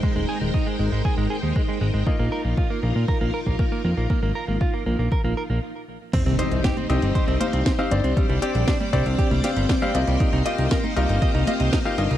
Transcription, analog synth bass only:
X:1
M:4/4
L:1/16
Q:1/4=118
K:Cm
V:1 name="Analog synth bass" clef=bass
z E,,, z E,,, z2 A,,, A,,, z A,,, z E,, z2 A,,, A,,, | z B,,, z B,,, z2 B,,, B,, z B,,, z B,,, z2 F,, B,,, | z A,,, z A,,, z2 B,,, B,,, z B,,, z B,,, z4 | z C,, z C,, z2 C,, G,,, z C,, z C,, z2 G,,, C,, |
z C,, z B,,, z2 C,, C,, z C,, z G,,, z2 C,, C,, | z C,, z C,, z2 C,, G,,, z C,, z C,, z2 G,,, C,, |]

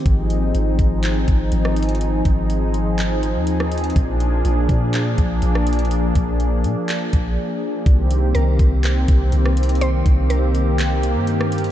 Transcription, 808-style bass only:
X:1
M:4/4
L:1/16
Q:1/4=123
K:Cm
V:1 name="808-style bass" clef=bass
A,,,4 A,,,2 A,,,4 A,,,2 A,,,4- | A,,,2 A,,,8- A,,, E,,4- E,, | B,,,4 B,,,2 B,,4 B,,,2 B,,,4- | B,,,2 B,,,4 B,, z3 B,,,2 z4 |
C,,4 C,,2 C,,4 C,,2 C,,4- | C,,2 C,,8- C,, G,,4- G,, |]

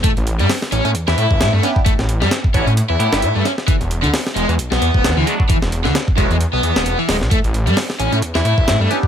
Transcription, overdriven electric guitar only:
X:1
M:4/4
L:1/16
Q:"Swing 16ths" 1/4=132
K:Amix
V:1 name="Overdriven electric guitar"
A, z2 G, z2 C C z E4 A, C z | A, z2 G, z2 C C z E4 A, C z | E, z2 D, z2 ^G, G, z B,4 E, G, z | E, z2 D, z2 ^G, G, z B,4 E, G, z |
A, z2 G, z2 C C z E4 A, C z |]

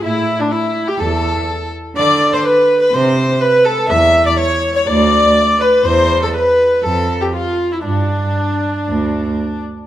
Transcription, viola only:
X:1
M:4/4
L:1/16
Q:1/4=123
K:Am
V:1 name="Viola"
E3 D E3 G A6 z2 | d3 c B3 B c4 B2 A2 | _f3 d _d3 d =d6 B2 | c3 A B4 A3 G F3 E |
D12- D2 z2 |]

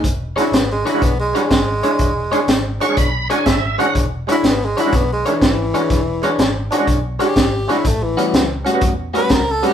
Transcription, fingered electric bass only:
X:1
M:4/4
L:1/8
Q:"Swing" 1/4=123
K:Emix
V:1 name="Fingered electric bass" clef=bass
E,,,2 G,,,2 B,,,2 G,,,2 | E,,,2 G,,,2 B,,,2 G,,,2 | E,,,2 G,,,2 B,,,2 G,,,2 | E,,,2 G,,,2 B,,,2 G,,,2 |
A,,,2 C,,2 E,,2 C,,2 |]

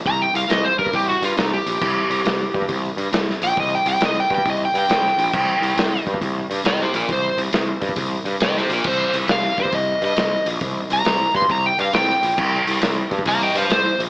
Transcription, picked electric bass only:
X:1
M:4/4
L:1/8
Q:"Swing" 1/4=136
K:Cm
V:1 name="Picked electric bass" clef=bass
C,, C,, C,, G,, C,, G,, C,, B,,, | C,, C,, C,, G,, C,, G,, C,, B,,, | C,, C,, C,, G,, C,, G,, C,, B,,, | C,, C,, C,, G,, C,, G,, C,, B,,, |
C,, C,, C,, G,, C,, G,, C,, B,,, | C,, C,, C,, G,, C,, G,, C,, B,,, | C,, C,, C,, G,, C,, G,, C,, B,,, | C,, C,, C,, G,, C,, G,, C,, B,,, |]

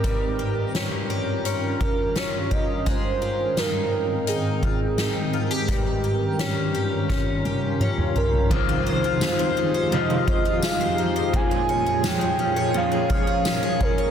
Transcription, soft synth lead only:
X:1
M:4/4
L:1/8
Q:1/4=85
K:Fm
V:1 name="Soft synth lead"
B3 z2 B d e | c2 B2 A4 | G6 z B | c4 e2 f2 |
a2 g2 f3 B |]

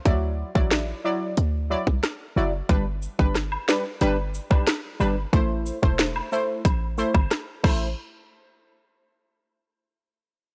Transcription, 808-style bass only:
X:1
M:4/4
L:1/16
Q:1/4=91
K:Am
V:1 name="808-style bass" clef=bass
D,,3 A,,,3 z2 D,,3 C,, z2 ^F,,,2 | G,,,3 G,,,3 z2 G,,,3 B,,, z2 G,,,2 | A,,,3 E,,,3 z2 A,,,3 G,,, z2 A,,,2 | z16 |]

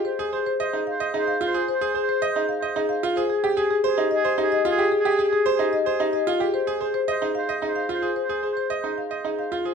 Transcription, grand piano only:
X:1
M:3/4
L:1/16
Q:1/4=111
K:Ab
V:1 name="Grand piano"
z A c z e E z e E z F A | z A c z e E z e E z F A | z G A z c E z c E z F G | z G A z c E z c E z F G |
z A c z e E z e E z F A | z A c z e E z e E z F A |]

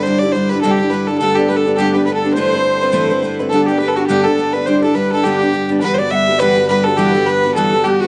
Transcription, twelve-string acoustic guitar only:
X:1
M:4/4
L:1/8
Q:"Swing" 1/4=208
K:Em
V:1 name="Twelve-string acoustic guitar"
[C,G,DEG] [DEG] [G,DEG] [DEG] [C,G,DEG] [DEG] [G,DEG] [DEG] | [G,,D,A,B,DG] [A,B,DG] [A,B,DG] [A,B,DG] [G,,D,A,B,DG] [A,B,DG] [A,B,DG] [A,B,DG] | [A,,E,A,CEB] [A,CEB] [A,CEB] [A,CEB] [A,,E,A,CEB] [A,CEB] [A,CEB] [A,CEB] | [G,,D,A,B,DG] [A,B,DG] [A,B,DG] [A,B,DG] [G,,D,A,B,DG] [B,DG] [A,B,DG] [A,B,DG] |
[C,G,DEG] [DEG] [G,DEG] [DEG] [G,,D,G,B,DG] [G,B,DG] [G,B,DG] [G,B,DG] | [E,G,B,FG] [B,FG] [G,B,FG] [B,FG] [E,G,B,FG] [B,FG] [G,B,FG] [B,FG] | [E,G,B,FG] [B,FG] [G,B,FG] [B,FG] [E,G,B,FG] [B,FG] [G,B,FG] [B,FG] |]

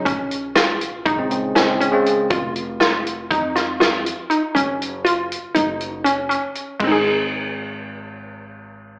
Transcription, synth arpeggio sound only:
X:1
M:9/8
L:1/8
Q:3/8=80
K:Abmix
V:1 name="Synth arpeggio sound"
D2 F2 E2 D D2 | F2 F2 E F F2 E | D2 F2 E2 D D2 | [A,CEA]8- [A,CEA] |]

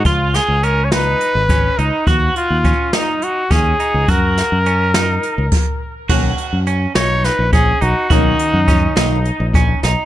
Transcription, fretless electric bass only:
X:1
M:7/8
L:1/16
Q:1/4=104
K:Cblyd
V:1 name="Fretless electric bass" clef=bass
D,,3 D,,6 A,,,3 D,, z | E,,2 z E,,2 z4 z E,,2 z D,, | G,,3 G,,6 D,, z4 | =B,,,2 z ^F,,3 B,,,3 ^A,,,3 B,,, z |
=B,,,2 z ^F,,3 B,,,3 ^A,,,3 B,,, z |]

